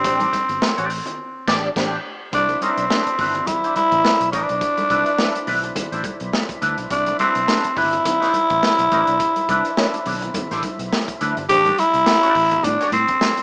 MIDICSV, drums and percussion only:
0, 0, Header, 1, 2, 480
1, 0, Start_track
1, 0, Tempo, 572519
1, 37, Time_signature, 4, 2, 24, 8
1, 11257, End_track
2, 0, Start_track
2, 0, Title_t, "Drums"
2, 30, Note_on_c, 9, 62, 37
2, 36, Note_on_c, 9, 42, 91
2, 37, Note_on_c, 9, 36, 124
2, 114, Note_off_c, 9, 62, 0
2, 120, Note_off_c, 9, 42, 0
2, 121, Note_off_c, 9, 36, 0
2, 164, Note_on_c, 9, 62, 42
2, 164, Note_on_c, 9, 63, 89
2, 169, Note_on_c, 9, 42, 48
2, 248, Note_off_c, 9, 62, 0
2, 248, Note_off_c, 9, 63, 0
2, 253, Note_off_c, 9, 42, 0
2, 272, Note_on_c, 9, 63, 77
2, 278, Note_on_c, 9, 36, 80
2, 280, Note_on_c, 9, 42, 77
2, 356, Note_off_c, 9, 63, 0
2, 362, Note_off_c, 9, 36, 0
2, 364, Note_off_c, 9, 42, 0
2, 411, Note_on_c, 9, 42, 52
2, 495, Note_off_c, 9, 42, 0
2, 513, Note_on_c, 9, 62, 34
2, 519, Note_on_c, 9, 38, 111
2, 597, Note_off_c, 9, 62, 0
2, 603, Note_off_c, 9, 38, 0
2, 653, Note_on_c, 9, 42, 58
2, 737, Note_off_c, 9, 42, 0
2, 754, Note_on_c, 9, 46, 68
2, 837, Note_off_c, 9, 46, 0
2, 886, Note_on_c, 9, 64, 71
2, 894, Note_on_c, 9, 42, 55
2, 970, Note_off_c, 9, 64, 0
2, 978, Note_off_c, 9, 42, 0
2, 1237, Note_on_c, 9, 36, 107
2, 1237, Note_on_c, 9, 49, 85
2, 1240, Note_on_c, 9, 38, 105
2, 1321, Note_off_c, 9, 36, 0
2, 1321, Note_off_c, 9, 49, 0
2, 1324, Note_off_c, 9, 38, 0
2, 1476, Note_on_c, 9, 36, 96
2, 1477, Note_on_c, 9, 49, 70
2, 1481, Note_on_c, 9, 38, 91
2, 1560, Note_off_c, 9, 36, 0
2, 1561, Note_off_c, 9, 49, 0
2, 1564, Note_off_c, 9, 38, 0
2, 1945, Note_on_c, 9, 62, 37
2, 1953, Note_on_c, 9, 36, 115
2, 1954, Note_on_c, 9, 42, 77
2, 2029, Note_off_c, 9, 62, 0
2, 2037, Note_off_c, 9, 36, 0
2, 2037, Note_off_c, 9, 42, 0
2, 2082, Note_on_c, 9, 63, 82
2, 2087, Note_on_c, 9, 42, 41
2, 2166, Note_off_c, 9, 63, 0
2, 2170, Note_off_c, 9, 42, 0
2, 2190, Note_on_c, 9, 63, 76
2, 2195, Note_on_c, 9, 42, 66
2, 2274, Note_off_c, 9, 63, 0
2, 2279, Note_off_c, 9, 42, 0
2, 2327, Note_on_c, 9, 42, 54
2, 2410, Note_off_c, 9, 42, 0
2, 2435, Note_on_c, 9, 38, 105
2, 2519, Note_off_c, 9, 38, 0
2, 2571, Note_on_c, 9, 42, 56
2, 2655, Note_off_c, 9, 42, 0
2, 2670, Note_on_c, 9, 64, 65
2, 2672, Note_on_c, 9, 46, 69
2, 2673, Note_on_c, 9, 36, 93
2, 2754, Note_off_c, 9, 64, 0
2, 2756, Note_off_c, 9, 36, 0
2, 2756, Note_off_c, 9, 46, 0
2, 2805, Note_on_c, 9, 64, 69
2, 2807, Note_on_c, 9, 42, 54
2, 2888, Note_off_c, 9, 64, 0
2, 2891, Note_off_c, 9, 42, 0
2, 2905, Note_on_c, 9, 62, 37
2, 2905, Note_on_c, 9, 63, 80
2, 2905, Note_on_c, 9, 64, 73
2, 2912, Note_on_c, 9, 36, 91
2, 2912, Note_on_c, 9, 42, 102
2, 2989, Note_off_c, 9, 62, 0
2, 2989, Note_off_c, 9, 63, 0
2, 2989, Note_off_c, 9, 64, 0
2, 2995, Note_off_c, 9, 42, 0
2, 2996, Note_off_c, 9, 36, 0
2, 3052, Note_on_c, 9, 42, 46
2, 3136, Note_off_c, 9, 42, 0
2, 3150, Note_on_c, 9, 42, 60
2, 3153, Note_on_c, 9, 63, 81
2, 3233, Note_off_c, 9, 42, 0
2, 3237, Note_off_c, 9, 63, 0
2, 3285, Note_on_c, 9, 42, 47
2, 3287, Note_on_c, 9, 36, 95
2, 3368, Note_off_c, 9, 42, 0
2, 3371, Note_off_c, 9, 36, 0
2, 3388, Note_on_c, 9, 63, 77
2, 3393, Note_on_c, 9, 38, 103
2, 3471, Note_off_c, 9, 63, 0
2, 3477, Note_off_c, 9, 38, 0
2, 3527, Note_on_c, 9, 42, 63
2, 3529, Note_on_c, 9, 62, 31
2, 3611, Note_off_c, 9, 42, 0
2, 3613, Note_off_c, 9, 62, 0
2, 3631, Note_on_c, 9, 42, 67
2, 3632, Note_on_c, 9, 36, 96
2, 3633, Note_on_c, 9, 63, 58
2, 3714, Note_off_c, 9, 42, 0
2, 3716, Note_off_c, 9, 36, 0
2, 3716, Note_off_c, 9, 63, 0
2, 3764, Note_on_c, 9, 42, 45
2, 3848, Note_off_c, 9, 42, 0
2, 3867, Note_on_c, 9, 36, 114
2, 3868, Note_on_c, 9, 42, 71
2, 3869, Note_on_c, 9, 62, 36
2, 3951, Note_off_c, 9, 36, 0
2, 3952, Note_off_c, 9, 42, 0
2, 3953, Note_off_c, 9, 62, 0
2, 4003, Note_on_c, 9, 42, 50
2, 4005, Note_on_c, 9, 62, 42
2, 4005, Note_on_c, 9, 63, 91
2, 4087, Note_off_c, 9, 42, 0
2, 4089, Note_off_c, 9, 62, 0
2, 4089, Note_off_c, 9, 63, 0
2, 4109, Note_on_c, 9, 36, 79
2, 4111, Note_on_c, 9, 42, 71
2, 4112, Note_on_c, 9, 63, 79
2, 4193, Note_off_c, 9, 36, 0
2, 4195, Note_off_c, 9, 42, 0
2, 4196, Note_off_c, 9, 63, 0
2, 4241, Note_on_c, 9, 42, 47
2, 4325, Note_off_c, 9, 42, 0
2, 4347, Note_on_c, 9, 38, 119
2, 4431, Note_off_c, 9, 38, 0
2, 4488, Note_on_c, 9, 42, 63
2, 4489, Note_on_c, 9, 62, 38
2, 4572, Note_off_c, 9, 42, 0
2, 4573, Note_off_c, 9, 62, 0
2, 4587, Note_on_c, 9, 46, 63
2, 4587, Note_on_c, 9, 64, 72
2, 4671, Note_off_c, 9, 46, 0
2, 4671, Note_off_c, 9, 64, 0
2, 4723, Note_on_c, 9, 64, 60
2, 4724, Note_on_c, 9, 42, 52
2, 4807, Note_off_c, 9, 64, 0
2, 4808, Note_off_c, 9, 42, 0
2, 4825, Note_on_c, 9, 62, 36
2, 4825, Note_on_c, 9, 63, 78
2, 4825, Note_on_c, 9, 64, 84
2, 4828, Note_on_c, 9, 42, 98
2, 4830, Note_on_c, 9, 36, 90
2, 4909, Note_off_c, 9, 62, 0
2, 4909, Note_off_c, 9, 63, 0
2, 4909, Note_off_c, 9, 64, 0
2, 4912, Note_off_c, 9, 42, 0
2, 4913, Note_off_c, 9, 36, 0
2, 4967, Note_on_c, 9, 42, 49
2, 5051, Note_off_c, 9, 42, 0
2, 5063, Note_on_c, 9, 36, 110
2, 5065, Note_on_c, 9, 42, 64
2, 5070, Note_on_c, 9, 63, 75
2, 5147, Note_off_c, 9, 36, 0
2, 5149, Note_off_c, 9, 42, 0
2, 5154, Note_off_c, 9, 63, 0
2, 5198, Note_on_c, 9, 42, 52
2, 5282, Note_off_c, 9, 42, 0
2, 5304, Note_on_c, 9, 62, 35
2, 5304, Note_on_c, 9, 63, 77
2, 5311, Note_on_c, 9, 38, 114
2, 5388, Note_off_c, 9, 62, 0
2, 5388, Note_off_c, 9, 63, 0
2, 5395, Note_off_c, 9, 38, 0
2, 5442, Note_on_c, 9, 36, 85
2, 5444, Note_on_c, 9, 62, 32
2, 5446, Note_on_c, 9, 42, 60
2, 5526, Note_off_c, 9, 36, 0
2, 5528, Note_off_c, 9, 62, 0
2, 5530, Note_off_c, 9, 42, 0
2, 5547, Note_on_c, 9, 63, 56
2, 5550, Note_on_c, 9, 42, 65
2, 5631, Note_off_c, 9, 63, 0
2, 5633, Note_off_c, 9, 42, 0
2, 5682, Note_on_c, 9, 42, 46
2, 5765, Note_off_c, 9, 42, 0
2, 5789, Note_on_c, 9, 36, 118
2, 5790, Note_on_c, 9, 42, 80
2, 5792, Note_on_c, 9, 62, 36
2, 5873, Note_off_c, 9, 36, 0
2, 5873, Note_off_c, 9, 42, 0
2, 5876, Note_off_c, 9, 62, 0
2, 5922, Note_on_c, 9, 42, 46
2, 5927, Note_on_c, 9, 62, 41
2, 5927, Note_on_c, 9, 63, 96
2, 6006, Note_off_c, 9, 42, 0
2, 6011, Note_off_c, 9, 62, 0
2, 6011, Note_off_c, 9, 63, 0
2, 6029, Note_on_c, 9, 42, 72
2, 6032, Note_on_c, 9, 63, 85
2, 6113, Note_off_c, 9, 42, 0
2, 6116, Note_off_c, 9, 63, 0
2, 6163, Note_on_c, 9, 42, 53
2, 6247, Note_off_c, 9, 42, 0
2, 6273, Note_on_c, 9, 38, 110
2, 6357, Note_off_c, 9, 38, 0
2, 6408, Note_on_c, 9, 42, 56
2, 6408, Note_on_c, 9, 62, 39
2, 6491, Note_off_c, 9, 42, 0
2, 6492, Note_off_c, 9, 62, 0
2, 6509, Note_on_c, 9, 46, 71
2, 6512, Note_on_c, 9, 36, 91
2, 6513, Note_on_c, 9, 64, 71
2, 6593, Note_off_c, 9, 46, 0
2, 6596, Note_off_c, 9, 36, 0
2, 6596, Note_off_c, 9, 64, 0
2, 6647, Note_on_c, 9, 42, 56
2, 6650, Note_on_c, 9, 64, 68
2, 6731, Note_off_c, 9, 42, 0
2, 6734, Note_off_c, 9, 64, 0
2, 6752, Note_on_c, 9, 42, 100
2, 6753, Note_on_c, 9, 62, 39
2, 6753, Note_on_c, 9, 63, 71
2, 6753, Note_on_c, 9, 64, 80
2, 6754, Note_on_c, 9, 36, 94
2, 6836, Note_off_c, 9, 42, 0
2, 6837, Note_off_c, 9, 62, 0
2, 6837, Note_off_c, 9, 63, 0
2, 6837, Note_off_c, 9, 64, 0
2, 6838, Note_off_c, 9, 36, 0
2, 6890, Note_on_c, 9, 62, 33
2, 6894, Note_on_c, 9, 38, 31
2, 6894, Note_on_c, 9, 42, 46
2, 6974, Note_off_c, 9, 62, 0
2, 6978, Note_off_c, 9, 38, 0
2, 6978, Note_off_c, 9, 42, 0
2, 6992, Note_on_c, 9, 42, 67
2, 6997, Note_on_c, 9, 63, 73
2, 7076, Note_off_c, 9, 42, 0
2, 7081, Note_off_c, 9, 63, 0
2, 7124, Note_on_c, 9, 42, 55
2, 7130, Note_on_c, 9, 36, 102
2, 7208, Note_off_c, 9, 42, 0
2, 7214, Note_off_c, 9, 36, 0
2, 7235, Note_on_c, 9, 38, 102
2, 7237, Note_on_c, 9, 62, 37
2, 7237, Note_on_c, 9, 63, 70
2, 7319, Note_off_c, 9, 38, 0
2, 7321, Note_off_c, 9, 62, 0
2, 7321, Note_off_c, 9, 63, 0
2, 7369, Note_on_c, 9, 42, 61
2, 7453, Note_off_c, 9, 42, 0
2, 7473, Note_on_c, 9, 63, 55
2, 7476, Note_on_c, 9, 42, 70
2, 7477, Note_on_c, 9, 36, 96
2, 7557, Note_off_c, 9, 63, 0
2, 7560, Note_off_c, 9, 42, 0
2, 7561, Note_off_c, 9, 36, 0
2, 7606, Note_on_c, 9, 42, 51
2, 7690, Note_off_c, 9, 42, 0
2, 7713, Note_on_c, 9, 36, 118
2, 7713, Note_on_c, 9, 42, 78
2, 7715, Note_on_c, 9, 62, 36
2, 7796, Note_off_c, 9, 36, 0
2, 7797, Note_off_c, 9, 42, 0
2, 7799, Note_off_c, 9, 62, 0
2, 7846, Note_on_c, 9, 42, 51
2, 7847, Note_on_c, 9, 63, 77
2, 7930, Note_off_c, 9, 42, 0
2, 7931, Note_off_c, 9, 63, 0
2, 7955, Note_on_c, 9, 36, 91
2, 7956, Note_on_c, 9, 42, 69
2, 7957, Note_on_c, 9, 63, 77
2, 8039, Note_off_c, 9, 36, 0
2, 8040, Note_off_c, 9, 42, 0
2, 8041, Note_off_c, 9, 63, 0
2, 8089, Note_on_c, 9, 42, 50
2, 8173, Note_off_c, 9, 42, 0
2, 8194, Note_on_c, 9, 38, 112
2, 8278, Note_off_c, 9, 38, 0
2, 8330, Note_on_c, 9, 62, 41
2, 8332, Note_on_c, 9, 42, 58
2, 8414, Note_off_c, 9, 62, 0
2, 8416, Note_off_c, 9, 42, 0
2, 8431, Note_on_c, 9, 46, 70
2, 8433, Note_on_c, 9, 64, 76
2, 8514, Note_off_c, 9, 46, 0
2, 8517, Note_off_c, 9, 64, 0
2, 8566, Note_on_c, 9, 64, 76
2, 8571, Note_on_c, 9, 42, 54
2, 8649, Note_off_c, 9, 64, 0
2, 8655, Note_off_c, 9, 42, 0
2, 8669, Note_on_c, 9, 62, 41
2, 8669, Note_on_c, 9, 63, 88
2, 8669, Note_on_c, 9, 64, 86
2, 8672, Note_on_c, 9, 42, 101
2, 8677, Note_on_c, 9, 36, 104
2, 8753, Note_off_c, 9, 62, 0
2, 8753, Note_off_c, 9, 63, 0
2, 8753, Note_off_c, 9, 64, 0
2, 8756, Note_off_c, 9, 42, 0
2, 8761, Note_off_c, 9, 36, 0
2, 8812, Note_on_c, 9, 38, 36
2, 8812, Note_on_c, 9, 42, 44
2, 8896, Note_off_c, 9, 38, 0
2, 8896, Note_off_c, 9, 42, 0
2, 8910, Note_on_c, 9, 42, 68
2, 8911, Note_on_c, 9, 36, 92
2, 8918, Note_on_c, 9, 63, 88
2, 8994, Note_off_c, 9, 42, 0
2, 8995, Note_off_c, 9, 36, 0
2, 9002, Note_off_c, 9, 63, 0
2, 9049, Note_on_c, 9, 42, 52
2, 9132, Note_off_c, 9, 42, 0
2, 9153, Note_on_c, 9, 63, 74
2, 9160, Note_on_c, 9, 38, 104
2, 9237, Note_off_c, 9, 63, 0
2, 9244, Note_off_c, 9, 38, 0
2, 9290, Note_on_c, 9, 36, 85
2, 9291, Note_on_c, 9, 42, 61
2, 9293, Note_on_c, 9, 62, 36
2, 9374, Note_off_c, 9, 36, 0
2, 9375, Note_off_c, 9, 42, 0
2, 9377, Note_off_c, 9, 62, 0
2, 9397, Note_on_c, 9, 42, 65
2, 9398, Note_on_c, 9, 63, 58
2, 9481, Note_off_c, 9, 42, 0
2, 9482, Note_off_c, 9, 63, 0
2, 9531, Note_on_c, 9, 42, 50
2, 9615, Note_off_c, 9, 42, 0
2, 9636, Note_on_c, 9, 42, 93
2, 9636, Note_on_c, 9, 62, 40
2, 9637, Note_on_c, 9, 36, 122
2, 9720, Note_off_c, 9, 42, 0
2, 9720, Note_off_c, 9, 62, 0
2, 9721, Note_off_c, 9, 36, 0
2, 9770, Note_on_c, 9, 42, 50
2, 9773, Note_on_c, 9, 63, 93
2, 9854, Note_off_c, 9, 42, 0
2, 9856, Note_off_c, 9, 63, 0
2, 9878, Note_on_c, 9, 42, 80
2, 9883, Note_on_c, 9, 63, 82
2, 9962, Note_off_c, 9, 42, 0
2, 9967, Note_off_c, 9, 63, 0
2, 10009, Note_on_c, 9, 42, 51
2, 10093, Note_off_c, 9, 42, 0
2, 10115, Note_on_c, 9, 38, 116
2, 10123, Note_on_c, 9, 62, 36
2, 10198, Note_off_c, 9, 38, 0
2, 10207, Note_off_c, 9, 62, 0
2, 10253, Note_on_c, 9, 42, 59
2, 10336, Note_off_c, 9, 42, 0
2, 10353, Note_on_c, 9, 46, 70
2, 10357, Note_on_c, 9, 36, 86
2, 10437, Note_off_c, 9, 46, 0
2, 10441, Note_off_c, 9, 36, 0
2, 10490, Note_on_c, 9, 42, 58
2, 10490, Note_on_c, 9, 64, 76
2, 10573, Note_off_c, 9, 42, 0
2, 10574, Note_off_c, 9, 64, 0
2, 10590, Note_on_c, 9, 63, 90
2, 10590, Note_on_c, 9, 64, 84
2, 10600, Note_on_c, 9, 36, 98
2, 10600, Note_on_c, 9, 42, 99
2, 10674, Note_off_c, 9, 63, 0
2, 10674, Note_off_c, 9, 64, 0
2, 10684, Note_off_c, 9, 36, 0
2, 10684, Note_off_c, 9, 42, 0
2, 10732, Note_on_c, 9, 62, 35
2, 10737, Note_on_c, 9, 38, 30
2, 10737, Note_on_c, 9, 42, 54
2, 10816, Note_off_c, 9, 62, 0
2, 10821, Note_off_c, 9, 38, 0
2, 10821, Note_off_c, 9, 42, 0
2, 10834, Note_on_c, 9, 42, 74
2, 10837, Note_on_c, 9, 63, 82
2, 10918, Note_off_c, 9, 42, 0
2, 10920, Note_off_c, 9, 63, 0
2, 10967, Note_on_c, 9, 42, 52
2, 10973, Note_on_c, 9, 36, 97
2, 11051, Note_off_c, 9, 42, 0
2, 11057, Note_off_c, 9, 36, 0
2, 11074, Note_on_c, 9, 62, 37
2, 11074, Note_on_c, 9, 63, 80
2, 11076, Note_on_c, 9, 38, 116
2, 11158, Note_off_c, 9, 62, 0
2, 11158, Note_off_c, 9, 63, 0
2, 11160, Note_off_c, 9, 38, 0
2, 11209, Note_on_c, 9, 62, 33
2, 11213, Note_on_c, 9, 42, 57
2, 11257, Note_off_c, 9, 42, 0
2, 11257, Note_off_c, 9, 62, 0
2, 11257, End_track
0, 0, End_of_file